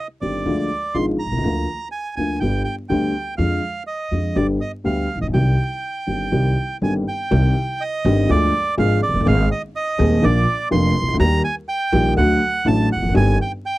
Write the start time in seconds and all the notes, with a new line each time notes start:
0.21 G1 G2 D#3 G3 C4 G4 D5
0.46 D2 D3 F3 G#3 F4
0.94 G#1 G#2 D3 F3 G#3 F4 C6
1.19 A#5
1.25 B1
1.31 C2
1.37 C#2
1.44 D2 D3 F3 A#3 F4
1.92 G#5
2.16 D2 D3 F3 A#3 F4 G#5
2.40 G1 G2 D3 G3 B3 G4 G5
2.64 G5
2.89 D2 D3 G3 B3 G4 G5
3.38 F2 D3 F3 G#3 F4 F5
3.87 D#5
4.11 F2 D3 F3 G#3 F4
4.35 G1 G2 D3 G3 B3 G4 D5
4.61 D#5
4.84 D2 D3 G3 B3 G4 F5
5.15 A1
5.21 A#1 D#5
5.27 B1
5.33 C2 C3 D#3 G3 C4 G4 G5
6.06 G1 G2 D#3 G3 C4 G4
6.32 C2 C3 D#3 G3 C4 G4
6.81 G1 G2 D#3 G3 C4 G4 G#5
7.08 G5
7.31 C2 C3 D#3 G3 C4 G4
7.81 D#5
8.05 G1 G2 D#3 G3 C4 G4
8.29 D2 D3 F3 G#3 D4 G#4 D5
8.77 G#1 G#2 F3 G#3 D4 G#4 F5
9.03 D5
9.08 F1
9.14 F#1
9.20 G1
9.26 G#1 G#2 D#3 G#3 C4 G#4 F5
9.51 D#5
9.76 D#5
9.98 D#1 D#2 D#3 G#3 C4 G#4
10.22 A#1 A#2 D3 F3 A#3 F4 D5
10.70 F1 F2 D3 F3 A#3 F4 C6
11.01 C2
11.08 C#2
11.13 D2
11.19 D#2 D#3 G3 A#3 G4 A#5
11.44 G#5
11.69 G5
11.92 A#1 A#2 D#3 G3 A#3 G4
12.17 D2 D3 F#3 A3 F#4 F#5
12.65 A1 A2 D3 F#3 A3 F#4 A5
12.92 E1 E2 F#5
13.02 F1 F2
13.09 F#1 F#2
13.14 G1 G2 D#3 G3 C4 G4 G#5
13.42 G5
13.66 G5